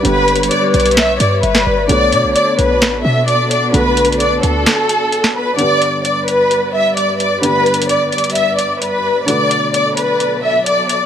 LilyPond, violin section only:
\new Staff \with { instrumentName = "Violin section" } { \time 4/4 \key g \lydian \tempo 4 = 130 b'4 d''8 d''8 e''8 d''8 b'4 | d''4 d''8 b'4 e''8 d''8 d''8 | b'4 d''8 a'2 b'8 | d''4 d''8 b'4 e''8 d''8 d''8 |
b'4 d''8 d''8 e''8 d''8 b'4 | d''4 d''8 b'4 e''8 d''8 d''8 | }